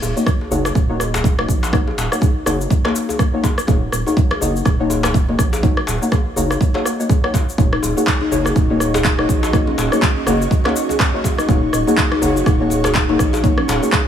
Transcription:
0.02 D#1, djembe tone, shaker
0.16 A#3 D#4 F#4 C#5, shaker
0.26 kick, cross-stick, shaker
0.41 djembe tone
0.51 F#1 A#3 D#4 F#4 C#5, djembe bass, shaker
0.65 cross-stick, djembe tone, shaker
0.75 D#1, kick, shaker
0.89 A#3 D#4 F#4 C#5
1.00 cross-stick, djembe tone, shaker
1.14 djembe slap, djembe bass, shaker
1.24 kick, djembe tone, shaker
1.38 A#3 D#4 F#4 C#5, cross-stick
1.48 A#1, kick, shaker
1.63 djembe slap, djembe tone, shaker
1.73 A#3 D#4 F#4 C#5, kick, cross-stick, shaker
1.87 djembe tone
1.97 D#1, djembe slap, shaker
2.11 A#3 D#4 F#4 C#5, cross-stick, shaker
2.21 kick, djembe tone, shaker
2.46 F#1 A#3 D#4 F#4 C#5, cross-stick, djembe tone, djembe bass, shaker
2.61 shaker
2.70 kick, shaker
2.84 A#3 D#4 F#4 C#5, cross-stick, djembe slap, djembe tone
2.96 shaker
3.09 djembe tone, shaker
3.19 kick, cross-stick, shaker
3.33 A#3 D#4 F#4 C#5
3.44 kick, djembe slap, djembe tone, shaker
3.58 cross-stick, shaker
3.67 D#1 A#3 D#4 F#4 C#5, kick, djembe tone, shaker
3.92 D#1, cross-stick, shaker
4.06 A#3 D#4 F#4 C#5, djembe tone, shaker
4.17 kick, shaker
4.31 cross-stick, djembe tone
4.41 F#1 A#3 D#4 F#4 C#5, djembe bass, shaker
4.56 shaker
4.65 D#1, kick, cross-stick, djembe tone, shaker
4.80 A#3 D#4 F#4 C#5
4.90 djembe tone, shaker
5.03 cross-stick, djembe slap, djembe bass, shaker
5.14 kick, shaker
5.29 A#3 D#4 F#4 C#5, djembe tone
5.39 A#1, kick, cross-stick, shaker
5.53 djembe slap, djembe tone, shaker
5.63 A#3 D#4 F#4 C#5, kick, shaker
5.77 cross-stick
5.87 D#1, djembe slap, djembe tone, shaker
6.02 A#3 D#4 F#4 C#5, shaker
6.12 kick, cross-stick, djembe tone, shaker
6.36 F#1 A#3 D#4 F#4 C#5, djembe bass, shaker
6.50 cross-stick, djembe tone, shaker
6.61 kick, shaker
6.74 A#3 D#4 F#4 C#5, djembe slap, djembe tone
6.85 A#3 D#4 F#4 C#5, cross-stick, shaker
6.99 A#3 D#4 F#4 C#5, shaker
7.09 kick, djembe tone, shaker
7.24 A#3 D#4 F#4 C#5, cross-stick
7.34 kick, djembe slap, djembe tone, shaker
7.49 shaker
7.58 D#1 A#3 D#4 F#4 C#5 D#5 C#6, kick, djembe tone, shaker
7.73 D#4, cross-stick
7.82 D#1, djembe tone, shaker
7.97 A#3 D#4 F#4 G#4 C#5, shaker
8.07 kick, cross-stick, clap, shaker
8.21 D#4, djembe tone
8.31 F#1 A#3 D#4 F#4 C#5, djembe bass, shaker
8.45 F#4, cross-stick, djembe tone, shaker
8.56 D#1, kick, shaker
8.70 A#3 D#4 F#4 C#5
8.80 cross-stick, djembe tone, shaker
8.94 G#4, djembe slap, djembe bass, shaker
9.04 kick, clap, djembe tone, shaker
9.19 A#3 D#4 F#4 C#5, cross-stick
9.29 A#1, kick, shaker
9.43 F#4, djembe slap, djembe tone, shaker
9.53 A#3 D#4 F#4 C#5, kick, cross-stick, shaker
9.67 C#4, djembe tone
9.78 D#1, djembe slap, shaker
9.92 A#3 D#4 F#4 G#4 C#5, cross-stick, shaker
10.02 kick, clap, djembe tone, shaker
10.16 C#4
10.26 F#1 A#3 D#4 F#4 C#5, cross-stick, djembe tone, djembe bass, shaker
10.41 F#4, shaker
10.51 kick, shaker
10.64 A#3 C#4 D#4 F#4 C#5, cross-stick, djembe slap, djembe tone
10.76 shaker
10.89 G#4, djembe tone, shaker
11.00 kick, cross-stick, clap, shaker
11.14 A#3 D#4 F#4 C#5
11.24 kick, djembe slap, djembe tone, shaker
11.38 D#4, cross-stick, shaker
11.48 D#1 A#3 D#4 F#4 C#5, kick, djembe tone, shaker
11.63 D#4
11.73 D#1, cross-stick, shaker
11.87 A#3 D#4 F#4 G#4 C#5, djembe tone, shaker
11.97 kick, clap, shaker
12.12 D#4, cross-stick, djembe tone
12.21 F#1 A#3 D#4 F#4 C#5, djembe bass, shaker
12.36 F#4, shaker
12.46 D#1, kick, cross-stick, djembe tone, shaker
12.60 A#3 D#4 F#4 C#5
12.70 djembe tone, shaker
12.84 G#4, cross-stick, djembe slap, djembe bass, shaker
12.95 kick, clap, shaker
13.09 A#3 D#4 F#4 C#5, djembe tone
13.19 A#1, kick, cross-stick, shaker
13.33 F#4, djembe slap, djembe tone, shaker
13.44 A#3 D#4 F#4 C#5, kick, shaker
13.58 C#4, cross-stick
13.68 D#1, djembe slap, djembe tone, shaker
13.82 A#3 D#4 F#4 G#4 C#5, shaker
13.92 kick, cross-stick, clap, djembe tone, shaker

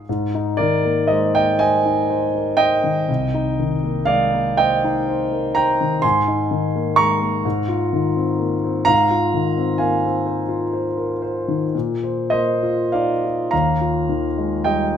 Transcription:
0.09 G#2
0.34 D#4
0.57 D#3 A#4 D5
0.85 A#3
1.07 G#3 C5 D#5
1.35 A#3 D#5 G5
1.59 C5 D#5 G#5
1.85 D#4
2.10 C5
2.35 A#4
2.57 C5 D#5 G5
2.84 D#3
3.08 C2
3.34 D#4
3.59 D#3
3.84 A#3
4.05 G#3 D5 F5
4.33 A#3
4.57 C5 D#5 G5
4.84 D#4
5.08 C5
5.32 A#4
5.55 C5 G5 A#5
5.81 D#3
6.02 G#2 G#5 C6
6.28 D#4
6.51 D#3
6.75 A#3
6.96 G#3 A#5 C#6
7.21 A#3
7.45 G#2
7.68 F4
7.93 D#3
8.16 C4
8.39 A#3
8.64 C4
8.85 G#2 F5 A#5
9.11 F4
9.34 D#3
9.57 C4
9.78 A#3 F5 G#5
10.05 C4
10.26 C5
10.48 F4
10.73 C5
10.97 A#4
11.22 C5
11.48 D#3
11.75 A#2
12.03 C5
12.30 A#3 C5 D#5
12.63 F4
12.92 D#4 D5 F5
13.25 F4
13.51 D#2 F5 A#5
13.81 F4
14.09 D#3
14.38 G#3
14.64 G3 D#5 G5

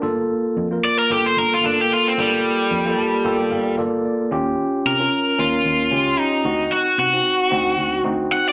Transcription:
0.02 G1 A#3 F4 A4
0.57 F2
0.71 A#3 F4 A#4
0.85 D5
0.99 A#4
1.10 G1 A#3 F4 G4 A4
1.26 C5
1.37 G1 A#4
1.54 F4
1.63 G1 A#3 D4 F4 A4
1.81 G4
1.93 F4
2.08 C4
2.18 G1 G3 A#3 F4 A4
2.71 F2
2.85 A#3 F4 A4
2.98 A5
3.25 G1 A#3 F4 A4 G5
3.51 G1 F5
3.77 G1 A#3 F4 A4 D5
4.05 D5
4.31 D#2 C#4 F4 G4
4.85 C3 A#4
4.99 C#4 F4 A#4
5.38 D#2 C#4 F4 A#4
5.65 D#2
5.91 C#2 C#4 F4 G4
6.19 D#4
6.43 D2 C4 D#4 F#4
6.72 F#4
6.98 C3 F#4
7.13 C4 D#4 F#4
7.50 D2 C4 D#4 F#4
7.79 D2
8.04 D2 C4 D#4 F#4
8.32 F#5
8.49 D5

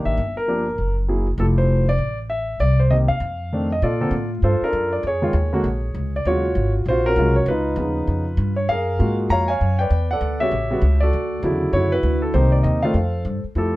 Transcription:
Already playing: D#3 A#3 D4 G4
0.05 A1 E5
0.17 G1
0.37 A#4
0.48 F3 A#3 D4 G4
0.78 F#1
1.08 F#3 A#3 E4 G#4
1.38 F1 F3 A3 E4 G4 A4
1.58 C5
1.89 D5
1.98 A1
2.30 E5
2.60 C2 D5
2.80 C5
2.91 D#3 A#3 C4 G4 D#5
3.08 D#2 F5
3.20 F2
3.53 D#3 A3 C4 D4
3.72 D#5
3.82 A#2 F4 A4 D5
4.01 D3 A#3 C4 A4
4.11 A2
4.42 G2 F4 A4 C5
4.61 D4 F4 A#4, muted upright bass stroke
4.73 F#2
4.93 D5
5.03 F2 C#5
5.07 G#4
5.22 D#3 G#3 B3 F4
5.33 D#2
5.53 D3 G#3 A#3 F#4
5.64 A#1
5.95 C#2
6.16 D5
6.25 D#2 C#3 F#3 G#3 F4 F#4 C#5
6.55 G#1
6.86 A#1 C5
6.90 F4 F#4
7.06 C#4 F#4 A#4
7.16 C2 C#3 F#3 G#3 F4
7.36 C#5
7.46 C#2 D#4 F4 B4
7.76 D#2 C#3 F3 B3 D#4
8.07 F2
8.37 G2
8.56 C#5
8.68 F#2 G#4 A#4 F5
8.99 G#2 G#3 A#3 F4 F#4
9.29 F2 C#5 F5 A#5
9.48 C#5 F5 G#5
9.61 F#2
9.79 B4 D5 G5
9.90 E2
10.11 A4 D5 F#5
10.21 D2
10.40 C#3 G3 B3 F#4 G4 C#5 E5
10.51 A1
10.70 C#3 G3 B3 F#4
10.82 C#2
11.00 F#4 A4 D5
11.13 D2
11.43 E2 C#3 D3 F#3 E4
11.73 F#2 E4 F#4 C#5
11.92 E4 F#4 B4
12.03 D2
12.22 A4
12.34 C2 D#3 A#3 C4 D#4 G4 C5
12.52 D5
12.63 D#2 D#5
12.83 D#3 A3 D4 F4 A4 C5 F5
12.94 F2
13.25 G2
13.44 muted upright bass stroke
13.55 F2 F3 A3 E4 G4 A4

